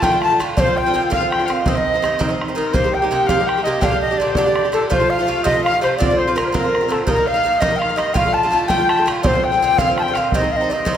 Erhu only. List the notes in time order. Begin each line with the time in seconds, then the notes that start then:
0.03 G5
0.23 A5
0.56 C5
0.76 G5
1.12 F5
1.31 G5
1.46 F5
1.63 D#5
2.55 A#4
2.73 C5
2.93 G5
3.10 G5
3.27 F5
3.47 G5
3.64 D#5
3.82 F5
4.02 D#5
4.19 D5
4.30 C5
4.37 D5
4.75 A4
4.90 C5
5.11 F5
5.44 D#5
5.65 F5
5.82 C5
5.97 D5
6.17 C5
6.36 A#4
6.53 A#4
7.07 A#4
7.26 F5
7.59 D#5
7.78 F5
7.97 D#5
8.14 F5
8.33 A5
8.68 G5
9.22 C5
9.44 G5
9.79 F5
9.98 G5
10.14 F5
10.33 D#5